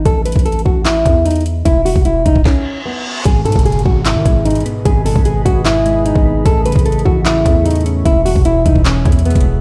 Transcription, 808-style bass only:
X:1
M:4/4
L:1/16
Q:1/4=150
K:G#phr
V:1 name="808-style bass" clef=bass
A,,,3 A,,,3 A,,,4 E,,6 | E,,,3 E,,,3 E,,,2 z8 | G,,,2 G,, F,,,3 G,,,3 D, G,,,3 A,,, z2 | G,,,3 G,,,3 G,,,6- G,,, G,,,3 |
A,,,3 A,,,3 A,,,4 E,,6 | E,,,3 E,,,3 E,,,4 E,,3 E,,,3 |]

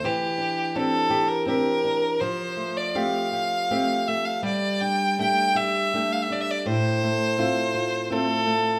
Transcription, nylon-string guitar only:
X:1
M:3/4
L:1/8
Q:1/4=82
K:F
V:1 name="Nylon-string guitar"
E, D [CDG] G [CDG] D | F, A, [A,CG] G [A,CG] A, | G, D [A,DG] G [A,DG] D | A,, A, [A,CF] F [A,CF] A, |]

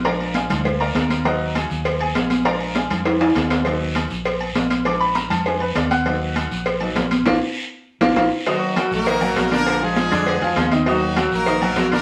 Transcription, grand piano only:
X:1
M:4/4
L:1/8
Q:1/4=200
K:Ebm
V:1 name="Grand piano"
[B=dfb]2 [Adfa]3 [Bdfb]3 | [Begb]2 [Aa]3 [Aa]3 | [B=dfb]2 [Adfa]3 [Adfa]3 | z8 |
=d' c' b =a _a c =d g- | g4 z4 | [B,=DF] z4 [B,DF] [B,DF] z | [E,Ee]2 [G,GB]2 [E,Ee] [G,GB]2 [=D,=D=d]- |
[=D,=D=d] [F,FA]2 [D,Dd]2 [F,FA]2 [E,Ee] | [E,Ee]2 [G,GB]2 [E,Ee] [G,GB]2 [=D,=D=d] |]
V:2 name="Grand piano" clef=bass
[F,A,=D]3 [F,A,D] z4 | [G,B,E]8 | [F,A,=D]8 | [G,B,E]3 z4 z |
[F,A,=D]3 z [F,A,D] z3 | [G,B,E]3 z2 [G,B,E] z2 | z8 | z8 |
z8 | z8 |]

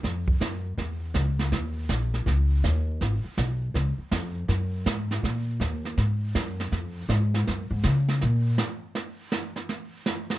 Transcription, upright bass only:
X:1
M:4/4
L:1/8
Q:"Swing" 1/4=162
K:F#
V:1 name="Upright bass" clef=bass
E,,2 F,,2 =E,,2 C,,2 | D,,2 A,,,2 C,,2 D,,2 | G,,, z B,,,2 C,, z E,,2 | F,,2 G,,2 A,,2 D,,2 |
G,,2 F,,2 =F,,2 _A,,2 | F,, G,, C,2 A,,2 z2 | z8 |]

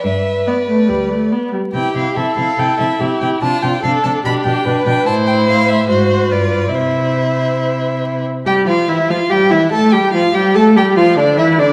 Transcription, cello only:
X:1
M:4/4
L:1/8
Q:1/4=143
K:C
V:1 name="Cello" clef=bass
G,,2 z2 D,,2 z2 | C, C, C, C, C, C, C, C, | C, C, C, C, B,, B,, B,, B,, | A,,4 _A,,2 G,,2 |
C,6- C, z | G F E F G E A G | F G A G F D E D |]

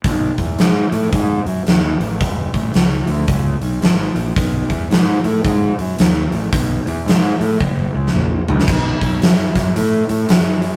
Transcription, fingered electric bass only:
X:1
M:4/4
L:1/8
Q:"Swing" 1/4=111
K:Bmix
V:1 name="Fingered electric bass" clef=bass
B,,, E,, G,, A,, G,, F,, D,, A,,, | E,,, A,,, C,, =D,, C,, B,,, G,,, ^A,,, | B,,, E,, G,, A,, G,, F,, D,, A,,, | B,,, E,, G,, A,, F,,, C,, ^A,,, C,, |
B,,, B,,, F,, F,, A,, A,, F,,2 |]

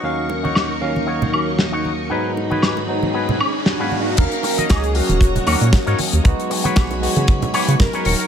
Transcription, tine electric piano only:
X:1
M:4/4
L:1/16
Q:"Swing 16ths" 1/4=116
K:Ebm
V:1 name="Tine electric piano"
[E,,G,B,Df]6 [E,,G,B,Df]4 [E,,G,B,Df]6 | [A,,G,CE]6 [A,,G,CE]4 z3 [A,,G,Cf]3 | [G,B,Df]6 [G,B,Df]4 [G,B,Df]6 | [A,CEG]6 [A,CEG]4 [A,CEG]4 z2 |]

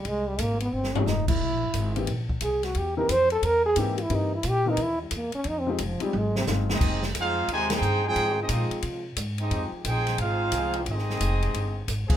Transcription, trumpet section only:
X:1
M:4/4
L:1/8
Q:"Swing" 1/4=178
K:Fm
V:1 name="Trumpet section"
z8 | z8 | z8 | z8 |
z6 z [CGAe]- | [CGAe] z [EAcf]2 [EGca] [EAcg]2 [EAcg]- | [EAcg] [CGAe]3 z3 [CGAe]- | [CGAe] z [EAcg]2 [EAcf]4 |
[CGAe]6 z2 |]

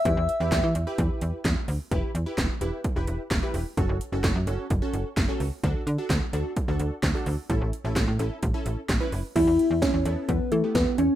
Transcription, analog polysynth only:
X:1
M:4/4
L:1/16
Q:1/4=129
K:Edor
V:1 name="Analog polysynth"
[EGB]2 z [EGB]2 z2 [EGB]4- [EGB] z4 | [EGB]2 z [EGB]2 z [EGB]2 z [EGB]2 z2 [EGB]2 z | [CFA]2 z [CFA]2 z [CFA]2 z [CFA]2 z2 [CFA]2 z | [DFA]2 z [DFA]2 z [DFA]2 z [DFA]2 z2 [DFA]2 z |
[CEA]2 z [CEA]2 z [CEA]2 z [CEA]2 z2 [CEB]2 z | [B,EG]3 z3 [B,EA]3 z2 [B,EG]3 z2 |]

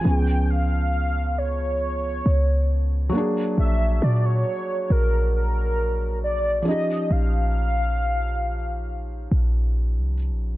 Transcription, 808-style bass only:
X:1
M:4/4
L:1/16
Q:1/4=68
K:Ebmix
V:1 name="808-style bass" clef=bass
D,,8- D,,2 D,,4 z2 | B,,,2 B,,2 z2 B,,,8 z2 | B,,,8- B,,,2 B,,,3 C,,3/2 B,,,3/2 |]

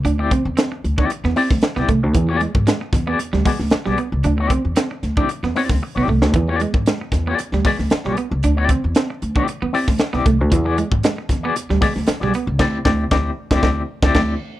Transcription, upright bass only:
X:1
M:4/4
L:1/16
Q:1/4=115
K:Dlyd
V:1 name="Upright bass" clef=bass
D,,3 E,, z2 D,,2 z E,, z D,, z B,,, =C,, D,, | E,,3 G,, z2 E,,2 z D,, z D,, z B,,, z C,, | D,,3 E,, z2 D,,2 z E,, z D,, z B,,, =C,, D,, | E,,3 G,, z2 E,,2 z D,, z D,, z B,,, z C,, |
D,,3 E,, z2 D,,2 z E,, z D,, z B,,, =C,, D,, | E,,3 G,, z2 E,,2 z D,, z D,, z B,,, z C,, | D,,2 D,,2 D,,2 z D,, D,,2 z D,, D,,2 z2 |]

